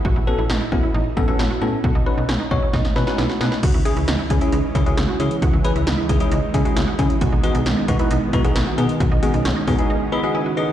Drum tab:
CC |----------------|----------------|x---------------|----------------|
HH |----------------|----------------|x-xxx-xxx-xxx-xx|x-xxx-xxx-xxx-xx|
SD |----o-------o---|----o---oooooooo|----o-------o---|----o-------o---|
BD |o-----o---o-----|o-----o-o-------|o-----o---o-----|o-----o---o---o-|

CC |----------------|----------------|
HH |x-xxx-xxx-xxx-xx|x-xxx-ox--------|
SD |----o-------o---|----o-----------|
BD |o-----o---o-----|o-----o---------|